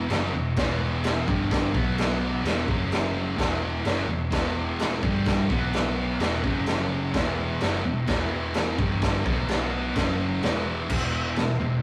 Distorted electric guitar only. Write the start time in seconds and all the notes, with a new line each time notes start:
Already playing: E3
0.10 F#2 C#3 F#3
0.34 E2 B2
0.57 E2 B2 E3
1.27 G2 D3 G3
1.72 B2 F#3 B3
2.44 E2 B2 E3
2.67 F#2 C#3 F#3
3.37 E2 B2 E3
3.85 F#2 C#3 F#3
4.09 E2 B2
4.31 E2 B2 E3
5.03 G2 D3 G3
5.49 B2 F#3 B3
6.21 E2 B2 E3
6.44 F#2 C#3 F#3
7.14 E2 B2 E3
7.63 F#2 C#3 F#3
7.85 E2 B2
8.07 E2 B2 E3
8.78 G2 D3 G3
9.24 B2 F#3 B3
9.95 F#2 C#3 F#3
10.43 E2 B2 E3
10.89 E2 B2 E3
11.38 E2 B2
11.60 E2 B2